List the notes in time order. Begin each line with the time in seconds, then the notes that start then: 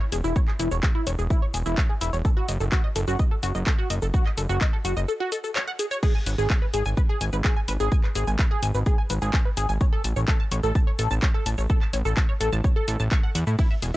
0.00 C#5
0.12 E1 G#4, open hi-hat, shaker
0.24 E1 E4, shaker
0.36 C#5, kick, shaker
0.48 G#4, clap
0.59 E1 E4, open hi-hat, shaker
0.71 E1 C#5, shaker
0.83 G#4, kick, clap, shaker
0.95 E4
1.07 E1 C#5, open hi-hat, shaker
1.19 E1 G#4, shaker
1.30 E4, kick, shaker
1.42 C#5
1.54 E1 G#4, open hi-hat, shaker
1.66 E1 E4, shaker
1.77 C#5, kick, clap, shaker
1.89 G#4
2.01 E1 E4, open hi-hat, shaker
2.13 E1 C#5, shaker
2.25 A4, kick, shaker
2.37 F#4
2.48 F#1 D#5, open hi-hat, shaker
2.60 F#1 A4, shaker
2.72 F#4, kick, clap, shaker
2.84 D#5
2.96 F#1 A4, open hi-hat, shaker
3.08 F#1 F#4, shaker
3.19 D#5, kick, shaker
3.31 A4
3.43 F#1 F#4, open hi-hat, shaker
3.55 F#1 D#5, shaker
3.67 A4, kick, clap, shaker
3.78 F#4
3.90 F#1 D#5, open hi-hat, shaker
4.02 F#1 A4, shaker
4.14 F#4, kick, shaker
4.26 D#5, clap
4.37 F#1 A4, open hi-hat, shaker
4.49 F#1 F#4, shaker
4.61 D#5, kick, clap, shaker
4.73 A4
4.85 F#1 F#4, open hi-hat, shaker
4.97 F#1 D#5, shaker
5.08 A4, shaker
5.20 F#4
5.32 A4, open hi-hat, shaker
5.44 A4, shaker
5.56 C#5, clap, shaker
5.67 F#5
5.79 G#4, open hi-hat, shaker
5.91 C#5, shaker
6.03 G#4, kick, crash, shaker
6.15 G#5
6.26 G#1 B4, open hi-hat, shaker
6.38 G#1 G#4, shaker
6.50 G#5, kick, clap, shaker
6.62 B4
6.74 G#1 G#4, open hi-hat, shaker
6.86 G#1 G#5, shaker
6.97 B4, kick, shaker
7.09 G#4
7.21 G#1 G#5, open hi-hat, shaker
7.33 G#1 B4, shaker
7.45 G#4, kick, clap, shaker
7.56 G#5
7.68 G#1 B4, open hi-hat, shaker
7.80 G#1 G#4, shaker
7.92 G#5, kick, shaker
8.04 B4, clap
8.15 G#1 G#4, open hi-hat, shaker
8.27 G#1 G#5, shaker
8.39 B4, kick, clap, shaker
8.51 G#4
8.63 G#1 G#5, open hi-hat, shaker
8.75 G#1 B4, shaker
8.86 G#4, kick, shaker
8.98 G#5
9.10 G#1 B4, open hi-hat, shaker
9.22 G#1 G#4, shaker
9.33 G#5, kick, clap, shaker
9.45 B4
9.57 G#1 G#4, open hi-hat, shaker
9.69 G#1 G#5, shaker
9.81 C#5, kick, shaker
9.93 A4
10.04 A1 A5, open hi-hat, shaker
10.16 A1 C#5, shaker
10.28 A4, kick, clap, shaker
10.40 A5
10.52 A1 C#5, open hi-hat, shaker
10.63 A1 A4, shaker
10.75 A5, kick, shaker
10.87 C#5
10.99 A1 A4, open hi-hat, shaker
11.11 A1 A5, shaker
11.22 C#5, kick, clap, shaker
11.34 A4
11.46 A1 A5, open hi-hat, shaker
11.58 A1 C#5, shaker
11.70 A4, kick, shaker
11.82 A5, clap
11.93 A1 C#5, open hi-hat, shaker
12.05 A1 A4, shaker
12.17 A5, kick, clap, shaker
12.29 C#5
12.40 A1 A4, open hi-hat, shaker
12.52 A1 A5, shaker
12.64 C#5, kick, shaker
12.76 A4
12.88 A1 A4, open hi-hat, shaker
13.00 A1 A5, shaker
13.11 C#6, kick, clap, shaker
13.23 F#5
13.35 E2 F#5, open hi-hat, shaker
13.47 A2 E4, shaker
13.59 E4, kick, ride, shaker
13.71 E5
13.82 E1 G#4, open hi-hat, shaker